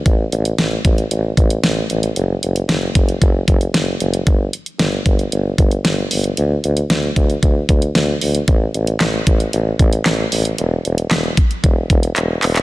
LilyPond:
<<
  \new Staff \with { instrumentName = "Tuba" } { \clef bass \time 4/4 \key fis \minor \tempo 4 = 114 a,,8 a,,8 a,,8 a,,8 a,,8 a,,8 a,,8 a,,8 | fis,,8 fis,,8 fis,,8 fis,,8 fis,,8 fis,,8 fis,,8 fis,,8 | g,,8 r8 g,,8 g,,8 g,,8 g,,8 g,,8 g,,8 | d,8 d,8 d,8 d,8 d,8 d,8 d,8 d,8 |
a,,8 a,,8 a,,8 a,,8 a,,8 a,,8 a,,8 a,,8 | e,,8 e,,8 e,,8 r8 e,,8 e,,8 e,,8 e,,8 | }
  \new DrumStaff \with { instrumentName = "Drums" } \drummode { \time 4/4 <hh bd>8 hh16 hh16 <hh sn>8 <hh bd>16 hh16 hh8 <hh bd>16 hh16 <hh sn>8 hh16 hh16 | hh8 hh16 hh16 <hh sn>8 <hh bd>16 hh16 <hh bd>8 <hh bd>16 hh16 <hh sn>8 hh16 hh16 | <hh bd>8 hh16 hh16 <hh sn>8 <hh bd>16 hh16 hh8 <hh bd>16 hh16 <hh sn>8 hho16 hh16 | hh8 hh16 hh16 <hh sn>8 <hh bd>16 hh16 <hh bd>8 <hh bd>16 hh16 <hh sn>8 hho16 hh16 |
<hh bd>8 hh16 hh16 <hc hh sn>8 <hh bd>16 hh16 hh8 <hh bd>16 hh16 <hc hh sn>8 hho16 hh16 | hh8 hh16 hh16 <hc hh sn>8 <hh bd>16 hh16 <hh bd>8 <hh bd>16 hh16 <hc hh>8 <hc hho>16 <hc hh>16 | }
>>